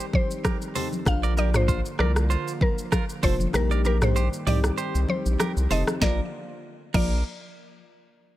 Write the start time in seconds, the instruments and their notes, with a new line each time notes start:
Already playing: analog synth pad D#3 G3 C4 G4, fm electric piano G3 C4 D#4 G4
0.00 shaker
0.13 synth pluck C5, kick, high conga
0.31 shaker
0.45 clean electric guitar G4 A#4, kick, cross-stick, high conga, shaker
0.62 shaker
0.75 fm electric piano G3 C4 D#4 G4, clean electric guitar A4 C5, open hi-hat, low conga, shaker
0.92 high conga, shaker
1.05 analog synth bass A#1, analog synth pad D3 F3 A#3 F4, fm electric piano F3 A#3 D4 F4, synth pluck F5, kick, cross-stick, low conga, shaker
1.23 clean electric guitar A#4 D5, shaker
1.37 clean electric guitar G4 A#4, synth pluck D5, high conga, shaker
1.54 fm electric piano F3 A#3 D4 F4, synth pluck C5, cross-stick, mid tom, shaker
1.68 clean electric guitar F4 C5, kick, shaker
1.85 shaker
1.99 analog synth bass C2, clean electric guitar A#4 D5, synth pluck A#4, cross-stick, high conga
2.16 cross-stick, shaker
2.30 clean electric guitar F4 C5, shaker
2.48 shaker
2.61 synth pluck A#4, kick, high conga
2.78 shaker
2.92 clean electric guitar F4 A#4, kick, cross-stick, high conga, shaker
3.09 shaker
3.23 analog synth bass F1, fm electric piano F3 A#3 D4 F4, clean electric guitar A4 C5, synth pluck C5, kick, open hi-hat, low conga, shaker
3.40 high conga, shaker
3.53 analog synth bass A#1, analog synth pad D#3 G3 G4, fm electric piano G3 A#3 D#4 G4, synth pluck A#4, cross-stick, low conga, shaker
3.71 clean electric guitar A#4 D5, shaker
3.85 clean electric guitar G4 A#4, synth pluck A#4, high conga, shaker
4.02 fm electric piano G3 A#3 D#4 G4, synth pluck C5, cross-stick, mid tom, shaker
4.16 clean electric guitar G4 C5, shaker
4.33 shaker
4.47 analog synth bass C2, fm electric piano G3 C4 D#4 G4, analog synth pad C4, clean electric guitar G4 D5, synth pluck D5, mid tom, open hi-hat, high conga, shaker
4.64 cross-stick, shaker
4.78 clean electric guitar G4 C5, shaker
4.95 analog synth bass C2, shaker
5.08 synth pluck C5, high conga
5.26 analog synth bass A#1, shaker
5.40 clean electric guitar G4 A#4, cross-stick, high conga, shaker
5.57 analog synth bass C2, shaker
5.70 analog synth bass F1, fm electric piano G3 C4 D#4 G4, clean electric guitar A4 C5, synth pluck D#5, open hi-hat, low conga, shaker
5.87 cross-stick, high conga, shaker
6.01 analog synth bass A#1, analog synth pad D3 F3 A#3 F4, fm electric piano F3 A#3 D4 F4, clean electric guitar A#4, synth pluck D5, kick, snare, high conga
6.94 analog synth bass A#1, fm electric piano F3 A#3 D4 F4, clean electric guitar A#4, synth pluck D5, kick, crash, high conga